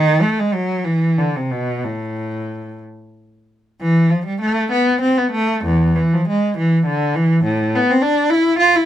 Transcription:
Already playing: D#3
0.22 A3
0.39 G#3
0.54 F#3
0.85 E3
1.18 D3
1.36 C3
1.51 B2
1.84 A2
3.81 E3
4.10 F3
4.26 G3
4.41 A3
4.72 B3
5.01 C4
5.18 B3
5.32 A3
5.65 E2
5.96 E3
6.14 F3
6.28 G#3
6.58 E3
6.86 D3
7.16 E3
7.44 A2
7.75 B3
7.90 C4
8.02 D4
8.30 E4
8.59 F4
8.76 E4

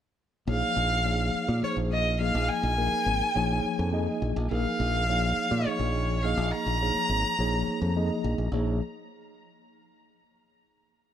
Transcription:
0.47 A#1 F3 A#3 D#4 G#4 C#5 F5
0.77 A#1
1.05 F3 A#3 D#4 G#4 C#5
1.34 muted fingered electric bass stroke
1.48 A#2
1.62 F3 A#3 D#4 G#4 C5 C#5, muted fingered electric bass stroke
1.77 A#1
1.92 D#5
2.20 F3 A#3 D#4 G#4 D#5 F5
2.35 A#1
2.49 G#5
2.63 A#1
2.77 F3 A#3 D#4 G#4 A#4
2.92 muted fingered electric bass stroke
3.06 G#1
3.35 A#1 F3 A#3 D#4 G#4 C#5
3.64 muted fingered electric bass stroke
3.79 F2
3.92 F3 A#3 D#4 G#4 D#5
4.22 A#1
4.36 A#1
4.50 A#1 F3 A#3 D#4 G#4 A#4 F5
4.80 A#1
5.09 F3 A#3 D#4 G#4 C#5
5.51 A#2
5.66 F3 A#3 D#4 G#4 C#5 D#5, muted fingered electric bass stroke
5.79 A#1
6.23 F3 A#3 D#4 G#4 D#5 F5
6.37 A#1
6.52 A#5
6.66 A#1
6.82 F3 A#3 D#4 G#4 C#5
7.09 G#1
7.39 A#1 F3 A#3 D#4 G#4 C#5
7.68 muted fingered electric bass stroke
7.82 F2
7.96 F3 A#3 D#4 G#4 D#5
8.24 A#1
8.38 A#1
8.52 A#1 F3 A#3 D#4 G#4 C#5

